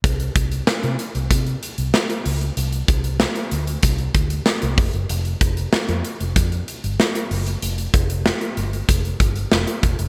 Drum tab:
HH |xxxx-xxxxxxx-xox|xxxx-xxxxxxx-xox|xxxx-xxxxxxx-xox|xxxx-xxxxxxx-xxx|
SD |----o-------o---|----o-------o---|----o-------o---|----o-------o---|
BD |o-o-----o-------|--o-----o-o---o-|--o-----o-------|--o-----o-o---o-|